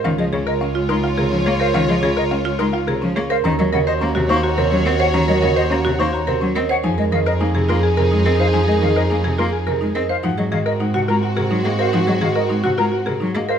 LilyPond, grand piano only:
\new Staff \with { instrumentName = "Grand piano" } { \time 3/4 \key aes \mixolydian \tempo 4 = 106 f''16 r16 des''16 bes'16 f''16 r16 bes'16 f''16 bes'16 r16 des''16 c''16 | f''16 r16 des''16 bes'16 f''16 r16 bes'16 f''16 bes'16 r16 des''16 c''16 | bes''16 r16 ees''16 c''16 bes''16 r16 c''16 bes''16 c''16 r16 ees''16 des''16 | bes''16 r16 ees''16 c''16 bes''16 r16 c''16 bes''16 c''16 r16 ees''16 des''16 |
aes''16 r16 ees''16 bes'16 aes''16 r16 bes'16 aes''16 bes'16 r16 ees''16 c''16 | aes''16 r16 ees''16 bes'16 aes''16 r16 bes'16 aes''16 bes'16 r16 ees''16 c''16 | ges''16 r16 ees''16 bes'16 ges''16 r16 bes'16 ges''16 bes'16 r16 ees''16 c''16 | ges''16 r16 ees''16 bes'16 ges''16 r16 bes'16 ges''16 bes'16 r16 ees''16 c''16 | }